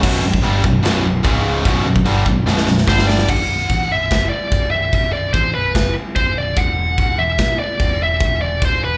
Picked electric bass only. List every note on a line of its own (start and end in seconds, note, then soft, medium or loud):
0.03 0.22 B0 loud
0.24 0.43 B0 medium
0.43 0.62 G1 medium
0.64 0.83 B0 medium
0.84 1.03 B0 loud
1.04 1.23 B0 medium
1.24 1.63 C#1 medium
1.65 1.83 B0 medium
1.84 2.04 B0 medium
2.05 2.24 G1 loud
2.26 2.45 B0 medium
2.46 2.64 B0 medium
2.65 2.85 B0 medium
2.87 3.26 G1 medium
3.29 3.46 B0 medium
3.46 3.67 B0 medium
3.70 3.88 A1 medium
3.89 4.08 B0 medium
4.11 4.30 F#1 loud
4.51 4.71 B0 medium
4.73 4.92 B0 medium
4.93 5.12 B0 medium
5.13 5.32 B0 medium
5.34 5.53 A1 medium
5.56 5.74 B0 medium
5.75 5.94 F#1 loud
6.16 6.35 B0 medium
6.37 6.56 B0 medium
6.57 6.76 E1 medium
6.79 6.97 E1 medium
6.98 7.17 D1 loud
7.18 7.38 E1 medium
7.39 7.58 B1 loud
7.80 8.00 E1 medium
8.02 8.20 E1 medium
8.21 8.40 E1 medium
8.43 8.61 E1 medium
8.62 8.82 D1 medium
8.84 8.97 E1 medium